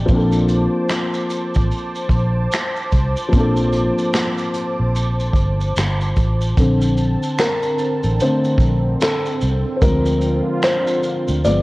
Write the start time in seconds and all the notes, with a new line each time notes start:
Already playing: D#3 A3 A#3 C4 D4 A5
0.06 A#1 F3 A#3 C5 D6, kick, shaker
0.11 C4 D4
0.17 A4
0.32 shaker
0.49 closed hi-hat, shaker
0.89 finger snap, snare, shaker
1.14 shaker
1.30 closed hi-hat, shaker
1.54 A1, kick, shaker
1.71 shaker
1.95 shaker
2.09 A#1, kick, closed hi-hat, shaker
2.52 finger snap, snare, shaker
2.76 shaker
2.92 C2, kick, closed hi-hat, shaker
3.16 shaker
3.29 F3 A#3
3.33 A#1 C4 D4, kick, shaker
3.39 A4
3.56 shaker
3.73 closed hi-hat, shaker
3.98 shaker
4.13 finger snap, snare, shaker
4.38 shaker
4.54 closed hi-hat, shaker
4.80 A#1
4.95 shaker
5.20 shaker
5.33 G1, kick, closed hi-hat, shaker
5.61 shaker
5.76 G1, finger snap, snare, shaker
6.01 shaker
6.16 A1, kick, closed hi-hat, shaker
6.41 shaker
6.57 A#1 D3 C4 A4 A5, kick, closed hi-hat, shaker
6.81 shaker
6.97 shaker
7.23 shaker
7.38 A#4, finger snap, snare, closed hi-hat, shaker
7.63 shaker
7.79 shaker
8.03 A1, shaker
8.20 D3 A3 C4 C5, closed hi-hat, shaker
8.44 shaker
8.58 A#1, kick, shaker
9.01 A4, finger snap, snare, closed hi-hat, shaker
9.26 shaker
9.41 C2, shaker
9.76 C5
9.81 D2 D3 F3 G#3 C4 F4 A#4, kick, closed hi-hat, shaker
10.06 shaker
10.21 shaker
10.62 C5, finger snap, snare, closed hi-hat, shaker
10.87 shaker
11.03 shaker
11.28 D2, shaker
11.44 G1 F3 G#3 B3 G#4 D5, closed hi-hat, shaker